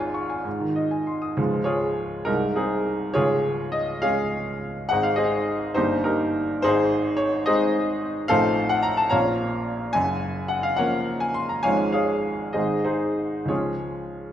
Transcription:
0.00 0.42 G#1 medium
0.00 0.43 G#2 medium
0.00 0.48 G#3 soft
0.00 1.07 F4 medium
0.00 0.48 C#5 soft
0.00 0.24 G#5 soft
0.14 0.39 C#6 soft
0.29 0.45 G#5 soft
0.45 1.35 G#2 medium
0.60 0.85 D#3 soft
0.76 1.01 D#5 soft
0.91 1.16 G#5 soft
1.07 1.32 C6 soft
1.22 1.37 D#6 soft
1.37 2.24 C#1 soft
1.37 2.24 C#2 medium
1.37 2.23 F3 soft
1.37 2.23 G#3 soft
1.37 1.64 F4 soft
1.64 2.22 F4 medium
1.64 2.22 G#4 soft
1.64 2.26 C#5 medium
2.25 3.13 C1 soft
2.25 3.13 C2 soft
2.25 3.12 G#3 soft
2.25 2.54 D#4 soft
2.25 2.56 A#4 medium
2.56 3.12 C4 soft
2.56 3.11 D#4 soft
2.56 3.13 G#4 medium
3.14 4.86 C#1 medium
3.14 4.86 C#2 medium
3.14 3.70 F4 medium
3.14 3.69 G#4 medium
3.14 3.73 C#5 medium
3.72 4.02 D#5 medium
4.02 4.86 G#3 soft
4.02 4.87 C#4 soft
4.02 4.86 G#4 medium
4.02 4.86 C#5 medium
4.02 4.89 F5 medium
4.89 5.75 G#1 medium
4.89 5.74 G#2 medium
4.89 5.73 G#3 soft
4.89 5.73 C4 soft
4.89 5.74 D#4 soft
4.89 5.04 F#5 medium
5.03 5.18 F5 medium
5.16 5.72 G#4 medium
5.16 5.72 C5 medium
5.16 5.75 D#5 medium
5.75 6.62 G1 soft
5.75 6.62 G2 soft
5.75 6.60 A#3 soft
5.75 6.03 D#4 medium
5.75 6.03 G4 medium
5.75 6.05 C5 medium
6.04 6.60 D#4 soft
6.04 6.60 G4 soft
6.04 6.63 A#4 medium
6.62 8.26 G#1 medium
6.62 8.26 G#2 medium
6.62 7.15 D#4 medium
6.62 7.15 G#4 medium
6.62 7.18 C5 medium
7.17 7.46 C#5 medium
7.46 8.26 G#3 soft
7.46 8.26 C4 soft
7.46 8.27 D#4 soft
7.46 8.26 G#4 medium
7.46 8.25 C5 medium
7.46 8.29 D#5 medium
8.28 9.11 A1 medium
8.28 9.11 A2 medium
8.28 9.09 F3 soft
8.28 9.10 C4 medium
8.28 9.10 D#4 soft
8.28 8.68 A4 medium
8.28 8.68 C5 medium
8.28 8.70 F5 medium
8.69 8.84 F#5 medium
8.83 8.98 A#5 medium
8.97 9.12 A5 medium
9.10 9.93 A#1 soft
9.10 9.92 A#2 medium
9.10 9.91 F3 soft
9.10 9.91 A#3 soft
9.10 9.90 C#5 medium
9.10 9.90 F5 medium
9.10 9.94 A#5 medium
9.14 9.92 C#4 soft
9.93 11.61 F#1 medium
9.93 11.60 F#2 medium
9.93 10.50 G#5 medium
10.48 10.63 F#5 medium
10.63 10.78 F5 medium
10.76 11.61 F3 soft
10.76 11.61 A#3 soft
10.76 11.61 C#4 soft
10.76 11.18 A#4 medium
10.76 11.18 C#5 medium
10.76 11.20 F#5 medium
11.20 11.35 G#5 medium
11.34 11.49 C6 medium
11.49 11.64 A#5 medium
11.63 12.53 G#1 soft
11.63 12.53 G#2 medium
11.63 12.52 F3 soft
11.63 12.52 G#3 soft
11.63 12.52 C#4 soft
11.63 11.92 C#5 medium
11.63 11.91 F5 medium
11.63 11.93 G#5 medium
11.92 12.51 G#4 medium
11.92 12.51 C#5 soft
11.92 12.54 F5 medium
12.53 13.47 G#1 soft
12.53 13.47 G#2 soft
12.53 13.46 D#3 soft
12.53 13.46 G#3 soft
12.53 12.84 D#4 soft
12.53 12.83 G#4 soft
12.53 12.83 C5 soft
12.53 12.85 D#5 medium
12.84 13.46 D#4 soft
12.84 13.46 G#4 soft
12.84 13.49 C5 medium
13.46 14.32 C#2 soft
13.46 14.32 F3 soft
13.46 14.32 G#3 soft
13.46 14.32 C#4 soft
13.46 14.32 F4 soft
13.46 14.32 G#4 soft
13.46 14.32 C#5 medium

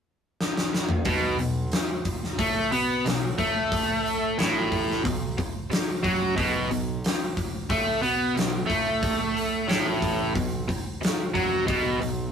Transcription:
0.41 snare medium
0.57 snare medium
0.74 snare medium
0.89 mid tom medium
1.05 1.37 B1 loud
1.05 1.38 B2 medium
1.05 kick loud
1.05 open hi-hat medium
1.38 1.70 B1 medium
1.38 1.66 B2 medium
1.38 open hi-hat medium
1.72 snare loud
1.72 open hi-hat medium
2.05 kick medium
2.05 open hi-hat medium
2.24 snare soft
2.39 2.70 A2 medium
2.39 2.71 A3 loud
2.39 kick loud
2.39 open hi-hat medium
2.72 3.03 B2 medium
2.72 3.04 B3 loud
2.72 open hi-hat medium
3.05 3.37 B1 medium
3.05 3.32 B2 medium
3.05 snare loud
3.05 open hi-hat medium
3.38 4.34 A2 medium
3.38 4.37 A3 loud
3.38 kick medium
3.38 open hi-hat medium
3.72 kick loud
3.72 open hi-hat medium
4.06 open hi-hat medium
4.39 5.01 A1 medium
4.39 5.04 A2 medium
4.39 snare loud
4.39 open hi-hat medium
4.72 kick medium
4.72 open hi-hat soft
4.91 snare soft
5.04 5.36 B1 medium
5.04 5.31 B2 medium
5.04 kick loud
5.04 open hi-hat medium
5.38 muted distorted electric guitar stroke medium
5.38 muted picked electric bass stroke soft
5.38 kick medium
5.38 open hi-hat soft
5.71 muted distorted electric guitar stroke medium
5.71 muted picked electric bass stroke soft
5.71 snare loud
5.71 open hi-hat medium
6.03 6.35 F#2 medium
6.03 6.36 F#3 loud
6.03 kick medium
6.03 open hi-hat medium
6.36 6.69 B1 loud
6.36 6.69 B2 loud
6.36 kick loud
6.36 open hi-hat medium
6.71 7.02 B1 medium
6.71 6.97 B2 medium
6.71 open hi-hat medium
7.04 snare loud
7.04 open hi-hat medium
7.37 kick medium
7.37 open hi-hat medium
7.70 8.01 A2 medium
7.70 8.02 A3 loud
7.70 kick loud
7.70 open hi-hat medium
8.02 8.35 B2 medium
8.02 8.35 B3 loud
8.02 open hi-hat medium
8.35 8.67 B1 medium
8.35 8.63 B2 medium
8.35 snare loud
8.35 open hi-hat medium
8.67 9.65 A2 medium
8.67 9.67 A3 loud
8.67 kick medium
8.67 open hi-hat medium
9.03 kick loud
9.03 open hi-hat medium
9.37 open hi-hat medium
9.68 10.31 A1 medium
9.68 10.34 A2 loud
9.68 snare loud
9.68 open hi-hat medium
10.02 kick medium
10.02 open hi-hat medium
10.35 10.66 B1 medium
10.35 10.62 B2 medium
10.35 kick loud
10.35 open hi-hat medium
10.68 muted distorted electric guitar stroke medium
10.68 muted picked electric bass stroke soft
10.68 kick medium
10.68 open hi-hat medium
11.01 muted distorted electric guitar stroke medium
11.01 muted picked electric bass stroke soft
11.01 snare loud
11.01 open hi-hat medium
11.34 11.66 F#2 medium
11.34 11.67 F#3 medium
11.34 kick medium
11.34 open hi-hat medium
11.67 11.99 B1 loud
11.67 12.00 B2 medium
11.67 kick loud
11.67 open hi-hat medium
12.01 12.32 B1 medium
12.01 12.28 B2 medium
12.01 open hi-hat medium

